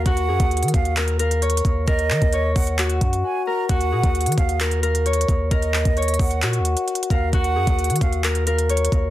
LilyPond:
<<
  \new Staff \with { instrumentName = "Flute" } { \time 4/4 \key ees \minor \tempo 4 = 132 ges''4. f''8 r2 | ees''4. ges''8 r4 aes''8 bes''8 | ges''4. f''8 r2 | ees''4. ges''8 r4. f''8 |
ges''4. f''8 r2 | }
  \new Staff \with { instrumentName = "Harp" } { \time 4/4 \key ees \minor ges'8 aes'4. bes'8 bes'8 des''4 | bes'4 des''4 ges'4. bes'8 | ges'8 aes'4. bes'8 bes'8 des''4 | bes'4 des''4 ges'4. bes'8 |
ges'8 aes'4. bes'8 bes'8 des''4 | }
  \new Staff \with { instrumentName = "808-style bass" } { \clef bass \time 4/4 \key ees \minor ees,8 ges,16 ees,8 ees16 ees,2 ees,8 | ees,8 ees16 ees,8. ees,4 ges,8 r4 | ees,8 bes,16 ees,8 ees16 ees,2 ees,8 | ees,8. ees,8. ees,8 bes,16. ees,16. r8. ees,8 |
ees,8 ges,16 ees,8 ees16 ees,2 ees,8 | }
  \new DrumStaff \with { instrumentName = "Drums" } \drummode { \time 4/4 <hh bd>16 hh8 <hh bd>16 hh32 hh32 hh32 hh32 <hh bd>16 hh16 <hc hh>16 hh16 hh16 hh16 \tuplet 3/2 { hh16 hh16 hh16 <hh bd>16 r16 r16 } | <hh bd>16 hh16 hc16 <hh bd>16 hh8 <hho bd>16 hh16 <hc hh>16 hh16 <hh bd>16 hh16 r4 | <hh bd>16 hh8 <hh bd>16 hh32 hh32 hh32 hh32 <hh bd>16 hh16 <hc hh>16 hh16 hh16 hh16 \tuplet 3/2 { hh16 hh16 hh16 <hh bd>16 r16 r16 } | <hh bd>16 hh16 hc16 <hh bd>16 hh32 hh32 hh32 hh32 <hho bd>16 hh16 <hc hh>16 hh16 hh16 hh16 \tuplet 3/2 { hh16 hh16 hh16 <hh bd>16 r16 r16 } |
<hh bd>16 hh8 <hh bd>16 hh32 hh32 hh32 hh32 <hh bd>16 hh16 <hc hh>16 hh16 hh16 hh16 \tuplet 3/2 { hh16 hh16 hh16 <hh bd>16 r16 r16 } | }
>>